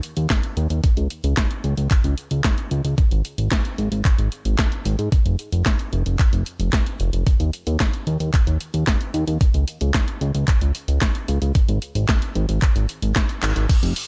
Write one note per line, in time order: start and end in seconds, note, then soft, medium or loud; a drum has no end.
0.03 closed hi-hat medium
0.17 0.27 D#2 medium
0.17 closed hi-hat soft
0.30 kick loud
0.30 snare loud
0.30 clap medium
0.30 closed hi-hat medium
0.43 closed hi-hat soft
0.57 0.67 D#2 medium
0.57 closed hi-hat medium
0.70 0.81 D#2 medium
0.70 closed hi-hat soft
0.84 kick loud
0.84 closed hi-hat medium
0.97 1.08 C#2 medium
0.97 closed hi-hat soft
1.10 closed hi-hat medium
1.24 1.34 C#2 medium
1.24 closed hi-hat soft
1.37 kick loud
1.37 snare loud
1.37 clap medium
1.37 closed hi-hat medium
1.51 closed hi-hat soft
1.64 1.75 C#2 medium
1.64 closed hi-hat soft
1.77 1.88 C#2 medium
1.77 closed hi-hat soft
1.91 kick loud
1.91 clap medium
1.91 closed hi-hat medium
2.04 2.15 C#2 medium
2.04 closed hi-hat soft
2.18 closed hi-hat medium
2.31 2.42 C#2 medium
2.31 closed hi-hat soft
2.44 kick loud
2.44 snare loud
2.44 clap medium
2.44 closed hi-hat medium
2.58 closed hi-hat soft
2.71 2.82 C#2 medium
2.71 closed hi-hat medium
2.85 2.95 C#2 medium
2.85 closed hi-hat soft
2.98 kick loud
2.98 closed hi-hat medium
3.11 3.22 G#1 medium
3.11 closed hi-hat soft
3.25 closed hi-hat medium
3.38 3.49 G#1 medium
3.38 closed hi-hat soft
3.52 kick loud
3.52 snare loud
3.52 clap medium
3.52 closed hi-hat medium
3.65 closed hi-hat soft
3.78 3.89 G#1 medium
3.78 closed hi-hat soft
3.92 4.02 G#1 medium
3.92 closed hi-hat soft
4.05 kick loud
4.05 clap medium
4.05 closed hi-hat medium
4.18 4.29 G#1 medium
4.18 closed hi-hat soft
4.32 closed hi-hat medium
4.45 4.56 G#1 medium
4.45 closed hi-hat soft
4.59 kick loud
4.59 snare loud
4.59 clap medium
4.59 closed hi-hat medium
4.72 closed hi-hat soft
4.85 4.96 G#1 medium
4.85 closed hi-hat medium
4.99 5.09 G#2 medium
4.99 closed hi-hat soft
5.12 kick loud
5.12 closed hi-hat medium
5.26 5.36 F1 medium
5.26 closed hi-hat soft
5.39 closed hi-hat medium
5.52 5.63 F1 medium
5.52 closed hi-hat soft
5.66 kick loud
5.66 snare loud
5.66 clap medium
5.66 closed hi-hat medium
5.79 closed hi-hat soft
5.93 6.03 F1 medium
5.93 closed hi-hat soft
6.06 6.17 F1 medium
6.06 closed hi-hat soft
6.19 kick loud
6.19 clap medium
6.19 closed hi-hat medium
6.33 6.43 F1 medium
6.33 closed hi-hat soft
6.46 closed hi-hat medium
6.59 6.70 F1 medium
6.59 closed hi-hat soft
6.73 kick loud
6.73 snare loud
6.73 clap medium
6.73 closed hi-hat medium
6.86 closed hi-hat soft
7.00 7.10 F1 medium
7.00 closed hi-hat medium
7.13 7.24 F1 medium
7.13 closed hi-hat soft
7.27 kick loud
7.27 closed hi-hat medium
7.40 7.50 D#2 medium
7.40 closed hi-hat soft
7.53 closed hi-hat medium
7.67 7.77 D#2 medium
7.67 closed hi-hat soft
7.80 kick loud
7.80 snare loud
7.80 clap medium
7.80 closed hi-hat medium
7.94 closed hi-hat soft
8.07 8.17 D#2 medium
8.07 closed hi-hat soft
8.20 8.31 D#2 medium
8.20 closed hi-hat soft
8.34 kick loud
8.34 clap medium
8.34 closed hi-hat medium
8.47 8.58 D#2 medium
8.47 closed hi-hat soft
8.61 closed hi-hat medium
8.74 8.84 D#2 medium
8.74 closed hi-hat soft
8.87 kick loud
8.87 snare loud
8.87 clap medium
8.87 closed hi-hat medium
9.01 closed hi-hat soft
9.14 9.25 D#2 medium
9.14 closed hi-hat medium
9.27 9.38 D#2 medium
9.27 closed hi-hat soft
9.41 kick loud
9.41 closed hi-hat loud
9.54 9.65 C#2 medium
9.54 closed hi-hat soft
9.68 closed hi-hat medium
9.81 9.92 C#2 medium
9.81 closed hi-hat soft
9.94 kick loud
9.94 snare loud
9.94 clap medium
9.94 closed hi-hat medium
10.08 closed hi-hat soft
10.21 10.32 C#2 medium
10.21 closed hi-hat soft
10.35 10.45 C#2 medium
10.35 closed hi-hat soft
10.48 kick loud
10.48 clap medium
10.48 closed hi-hat loud
10.61 10.72 C#2 medium
10.61 closed hi-hat soft
10.75 closed hi-hat medium
10.88 10.99 C#2 medium
10.88 closed hi-hat soft
11.02 kick loud
11.02 snare loud
11.02 clap medium
11.02 closed hi-hat loud
11.15 closed hi-hat soft
11.28 11.39 C#2 medium
11.28 closed hi-hat medium
11.42 11.52 C#2 medium
11.42 closed hi-hat soft
11.55 kick loud
11.55 closed hi-hat loud
11.69 11.79 G#1 medium
11.69 closed hi-hat soft
11.82 closed hi-hat medium
11.95 12.06 G#1 medium
11.95 closed hi-hat soft
12.09 kick loud
12.09 snare loud
12.09 clap medium
12.09 closed hi-hat loud
12.22 closed hi-hat soft
12.35 12.46 G#1 medium
12.35 closed hi-hat soft
12.49 12.59 G#1 medium
12.49 closed hi-hat soft
12.62 kick loud
12.62 clap medium
12.62 closed hi-hat medium
12.76 12.86 G#1 medium
12.76 closed hi-hat soft
12.89 closed hi-hat medium
13.02 13.13 G#1 medium
13.02 closed hi-hat soft
13.16 kick loud
13.16 snare loud
13.16 clap medium
13.16 closed hi-hat loud
13.29 closed hi-hat soft
13.43 13.53 G#1 medium
13.43 clap medium
13.43 closed hi-hat medium
13.56 13.67 G#1 medium
13.56 closed hi-hat soft
13.69 kick loud
13.69 closed hi-hat loud
13.69 crash loud
13.69 tambourine soft
13.83 13.93 F1 medium
13.83 closed hi-hat soft
13.83 tambourine soft
13.96 open hi-hat loud